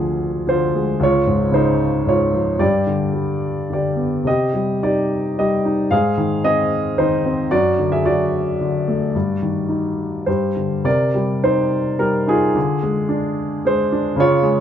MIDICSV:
0, 0, Header, 1, 2, 480
1, 0, Start_track
1, 0, Key_signature, -3, "minor"
1, 0, Tempo, 537634
1, 887, Time_signature, 3, 2, 24, 8
1, 2810, Tempo, 558659
1, 4730, Tempo, 537634
1, 8090, Tempo, 568182
1, 10970, Tempo, 551978
1, 11930, Tempo, 524934
1, 12794, End_track
2, 0, Start_track
2, 0, Title_t, "Upright piano"
2, 0, Program_c, 0, 0
2, 0, Control_c, 0, 64, 127
2, 0, Note_on_c, 0, 38, 49
2, 0, Note_on_c, 0, 50, 41
2, 0, Note_on_c, 0, 53, 44
2, 0, Note_on_c, 0, 62, 46
2, 0, Note_on_c, 0, 68, 62
2, 386, Note_off_c, 0, 68, 0
2, 389, Note_off_c, 0, 62, 0
2, 407, Note_off_c, 0, 50, 0
2, 420, Note_on_c, 0, 50, 45
2, 435, Note_on_c, 0, 72, 68
2, 439, Note_on_c, 0, 65, 52
2, 668, Note_on_c, 0, 56, 49
2, 851, Note_off_c, 0, 38, 0
2, 859, Note_off_c, 0, 53, 0
2, 865, Note_off_c, 0, 72, 0
2, 867, Note_off_c, 0, 65, 0
2, 876, Note_off_c, 0, 50, 0
2, 888, Note_off_c, 0, 56, 0
2, 891, Note_on_c, 0, 37, 57
2, 898, Control_c, 0, 64, 0
2, 922, Note_on_c, 0, 65, 56
2, 922, Note_on_c, 0, 73, 77
2, 1048, Control_c, 0, 64, 127
2, 1134, Note_on_c, 0, 44, 49
2, 1344, Note_off_c, 0, 65, 0
2, 1352, Note_on_c, 0, 49, 52
2, 1374, Note_on_c, 0, 72, 63
2, 1378, Note_on_c, 0, 63, 56
2, 1390, Note_off_c, 0, 73, 0
2, 1819, Note_off_c, 0, 63, 0
2, 1826, Note_off_c, 0, 44, 0
2, 1840, Note_on_c, 0, 44, 42
2, 1861, Note_on_c, 0, 65, 51
2, 1863, Note_on_c, 0, 73, 68
2, 1865, Note_off_c, 0, 72, 0
2, 2083, Note_on_c, 0, 53, 47
2, 2293, Note_off_c, 0, 37, 0
2, 2294, Note_off_c, 0, 49, 0
2, 2302, Note_off_c, 0, 65, 0
2, 2310, Note_off_c, 0, 44, 0
2, 2315, Note_on_c, 0, 43, 55
2, 2316, Note_on_c, 0, 74, 71
2, 2317, Note_off_c, 0, 53, 0
2, 2322, Note_on_c, 0, 67, 54
2, 2337, Control_c, 0, 64, 0
2, 2350, Note_off_c, 0, 73, 0
2, 2509, Control_c, 0, 64, 127
2, 2561, Note_on_c, 0, 50, 45
2, 2798, Note_on_c, 0, 55, 37
2, 3249, Note_off_c, 0, 67, 0
2, 3270, Note_off_c, 0, 50, 0
2, 3283, Note_on_c, 0, 50, 33
2, 3299, Note_off_c, 0, 74, 0
2, 3312, Note_on_c, 0, 74, 52
2, 3313, Note_on_c, 0, 67, 44
2, 3508, Note_on_c, 0, 59, 33
2, 3726, Note_off_c, 0, 43, 0
2, 3731, Note_off_c, 0, 55, 0
2, 3747, Note_off_c, 0, 67, 0
2, 3751, Note_off_c, 0, 50, 0
2, 3751, Note_off_c, 0, 59, 0
2, 3753, Note_on_c, 0, 48, 44
2, 3775, Note_on_c, 0, 75, 67
2, 3777, Control_c, 0, 64, 0
2, 3787, Note_on_c, 0, 67, 52
2, 3793, Note_off_c, 0, 74, 0
2, 3928, Control_c, 0, 64, 127
2, 4002, Note_on_c, 0, 55, 40
2, 4231, Note_off_c, 0, 67, 0
2, 4255, Note_on_c, 0, 63, 40
2, 4257, Note_on_c, 0, 74, 60
2, 4265, Note_on_c, 0, 67, 53
2, 4273, Note_off_c, 0, 75, 0
2, 4699, Note_off_c, 0, 74, 0
2, 4703, Note_off_c, 0, 67, 0
2, 4717, Note_off_c, 0, 55, 0
2, 4730, Note_on_c, 0, 55, 38
2, 4735, Note_on_c, 0, 75, 60
2, 4742, Note_on_c, 0, 67, 48
2, 4958, Note_off_c, 0, 63, 0
2, 4971, Note_on_c, 0, 63, 41
2, 5165, Note_off_c, 0, 48, 0
2, 5177, Note_off_c, 0, 75, 0
2, 5181, Note_off_c, 0, 67, 0
2, 5194, Note_off_c, 0, 55, 0
2, 5199, Note_on_c, 0, 77, 71
2, 5201, Note_off_c, 0, 63, 0
2, 5204, Note_on_c, 0, 44, 52
2, 5209, Note_on_c, 0, 68, 65
2, 5219, Control_c, 0, 64, 0
2, 5373, Control_c, 0, 64, 127
2, 5438, Note_on_c, 0, 51, 44
2, 5654, Note_off_c, 0, 68, 0
2, 5677, Note_on_c, 0, 60, 41
2, 5679, Note_on_c, 0, 75, 81
2, 5688, Note_on_c, 0, 68, 56
2, 5697, Note_off_c, 0, 77, 0
2, 6133, Note_off_c, 0, 68, 0
2, 6155, Note_off_c, 0, 51, 0
2, 6157, Note_on_c, 0, 72, 68
2, 6158, Note_on_c, 0, 63, 56
2, 6168, Note_on_c, 0, 51, 45
2, 6177, Note_off_c, 0, 75, 0
2, 6391, Note_off_c, 0, 60, 0
2, 6404, Note_on_c, 0, 60, 52
2, 6598, Note_off_c, 0, 44, 0
2, 6598, Note_off_c, 0, 63, 0
2, 6598, Note_off_c, 0, 72, 0
2, 6622, Note_off_c, 0, 51, 0
2, 6630, Note_off_c, 0, 60, 0
2, 6630, Note_on_c, 0, 66, 62
2, 6630, Note_on_c, 0, 74, 80
2, 6639, Note_on_c, 0, 42, 52
2, 6646, Control_c, 0, 64, 0
2, 6793, Control_c, 0, 64, 127
2, 6878, Note_on_c, 0, 50, 48
2, 6965, Note_off_c, 0, 66, 0
2, 6995, Note_on_c, 0, 76, 65
2, 6996, Note_on_c, 0, 68, 51
2, 7001, Note_off_c, 0, 74, 0
2, 7109, Note_off_c, 0, 68, 0
2, 7115, Note_on_c, 0, 74, 65
2, 7118, Note_on_c, 0, 66, 55
2, 7120, Note_off_c, 0, 76, 0
2, 7127, Note_on_c, 0, 54, 52
2, 7596, Note_off_c, 0, 50, 0
2, 7610, Note_on_c, 0, 50, 41
2, 7852, Note_on_c, 0, 57, 46
2, 8056, Note_off_c, 0, 42, 0
2, 8067, Note_off_c, 0, 54, 0
2, 8078, Note_off_c, 0, 50, 0
2, 8085, Note_off_c, 0, 57, 0
2, 8095, Note_on_c, 0, 43, 46
2, 8099, Control_c, 0, 64, 0
2, 8250, Control_c, 0, 64, 127
2, 8324, Note_on_c, 0, 51, 38
2, 8548, Note_on_c, 0, 63, 36
2, 9009, Note_off_c, 0, 74, 0
2, 9010, Note_off_c, 0, 66, 0
2, 9016, Note_off_c, 0, 43, 0
2, 9022, Note_off_c, 0, 51, 0
2, 9024, Note_off_c, 0, 63, 0
2, 9034, Note_on_c, 0, 72, 52
2, 9039, Note_on_c, 0, 43, 44
2, 9042, Note_on_c, 0, 67, 37
2, 9052, Control_c, 0, 64, 0
2, 9222, Control_c, 0, 64, 127
2, 9288, Note_on_c, 0, 50, 36
2, 9501, Note_off_c, 0, 67, 0
2, 9519, Note_off_c, 0, 43, 0
2, 9525, Note_on_c, 0, 48, 55
2, 9526, Note_off_c, 0, 50, 0
2, 9530, Note_on_c, 0, 74, 72
2, 9546, Note_off_c, 0, 72, 0
2, 9546, Control_c, 0, 64, 0
2, 9546, Note_on_c, 0, 70, 50
2, 9716, Control_c, 0, 64, 127
2, 9780, Note_on_c, 0, 55, 48
2, 10025, Note_on_c, 0, 63, 46
2, 10025, Note_on_c, 0, 72, 72
2, 10029, Note_off_c, 0, 74, 0
2, 10227, Note_off_c, 0, 70, 0
2, 10478, Note_off_c, 0, 55, 0
2, 10491, Note_on_c, 0, 55, 46
2, 10494, Note_on_c, 0, 70, 75
2, 10514, Note_off_c, 0, 72, 0
2, 10718, Note_off_c, 0, 63, 0
2, 10731, Note_on_c, 0, 63, 47
2, 10741, Note_off_c, 0, 70, 0
2, 10743, Note_on_c, 0, 68, 83
2, 10749, Note_on_c, 0, 65, 57
2, 10932, Note_off_c, 0, 48, 0
2, 10954, Note_off_c, 0, 55, 0
2, 10962, Note_off_c, 0, 63, 0
2, 10964, Note_on_c, 0, 50, 54
2, 10983, Control_c, 0, 64, 0
2, 11141, Control_c, 0, 64, 127
2, 11206, Note_on_c, 0, 56, 55
2, 11432, Note_on_c, 0, 62, 54
2, 11904, Note_off_c, 0, 65, 0
2, 11911, Note_off_c, 0, 56, 0
2, 11924, Note_on_c, 0, 56, 58
2, 11937, Note_on_c, 0, 72, 78
2, 11974, Note_off_c, 0, 68, 0
2, 12157, Note_off_c, 0, 62, 0
2, 12170, Note_on_c, 0, 62, 54
2, 12374, Note_off_c, 0, 50, 0
2, 12391, Note_on_c, 0, 49, 67
2, 12396, Note_off_c, 0, 56, 0
2, 12405, Note_off_c, 0, 62, 0
2, 12420, Note_on_c, 0, 65, 73
2, 12425, Control_c, 0, 64, 0
2, 12427, Note_on_c, 0, 73, 88
2, 12432, Note_off_c, 0, 72, 0
2, 12609, Control_c, 0, 64, 127
2, 12631, Note_on_c, 0, 56, 58
2, 12794, Note_off_c, 0, 49, 0
2, 12794, Note_off_c, 0, 56, 0
2, 12794, Note_off_c, 0, 65, 0
2, 12794, Note_off_c, 0, 73, 0
2, 12794, End_track
0, 0, End_of_file